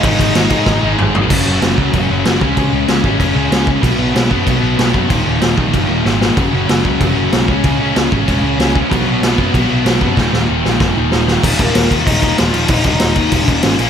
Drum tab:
CC |xxxx----|x-x-x-x-|x-x-x-x-|x-x-x-x-|
SD |--o-o---|--o---o-|--o---o-|--o---o-|
T2 |------o-|--------|--------|--------|
FT |-------o|--------|--------|--------|
BD |oo-oo---|o--oo--o|o--oo--o|o--oo--o|

CC |x-x-x---|x-x-x-x-|x-x-x-x-|x-x-x-x-|
SD |--o---oo|--o---o-|--o---o-|--o---o-|
T2 |--------|--------|--------|--------|
FT |--------|--------|--------|--------|
BD |o--oo---|o--oo--o|o--oo--o|o--oo--o|

CC |--------|xxxxxxxx|xxxxxxxx|
SD |oo-oo-oo|--o---o-|--o---o-|
T2 |--------|--------|--------|
FT |--------|--------|--------|
BD |o---o---|oo-ooo--|oo-ooo--|